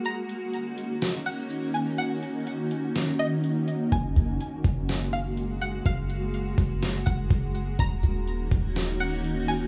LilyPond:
<<
  \new Staff \with { instrumentName = "Synth pluck" } { \time 4/4 \key ees \minor \tempo 4 = 124 bes''2~ bes''8 ges''4 aes''8 | ges''2~ ges''8 ees''8 r4 | aes''2~ aes''8 f''4 ges''8 | f''2~ f''8 ges''4. |
bes''2~ bes''8 ges''4 aes''8 | }
  \new Staff \with { instrumentName = "Ambient pad" } { \time 4/4 \key ees \minor << { <ees des' ges'>1~ | <ees des' ges'>1 | <aes ges'>1~ | <aes ges'>1 |
<ees bes des' ges'>1 | } \\ { <bes ees'>1~ | <bes ees'>1~ | <bes ees'>1~ | <bes ees'>1 |
ees'1 | } >> }
  \new Staff \with { instrumentName = "808-style bass" } { \clef bass \time 4/4 \key ees \minor r1 | r1 | ges,,8 ges,,8 r8 ges,,2~ ges,,8 | ges,,4. ges,,4 ges,,8 ges,,4 |
ees,,8 ees,,4 ees,,2~ ees,,8 | }
  \new DrumStaff \with { instrumentName = "Drums" } \drummode { \time 4/4 hh8 hh8 hh8 hh8 <hh sn>8 hh8 hh8 hh8 | hh8 hh8 hh8 hh8 <hh sn>8 hh8 hh8 hh8 | <hh bd>8 hh8 hh8 <hh bd>8 <hh sn>8 hh8 hh8 hh8 | <hh bd>8 hh8 hh8 <hho bd>8 <hh sn>8 <hh bd>8 <hh bd>8 hh8 |
<hh bd>8 hh8 hh8 <hh bd>8 <hh sn>8 hh8 hh8 hh8 | }
>>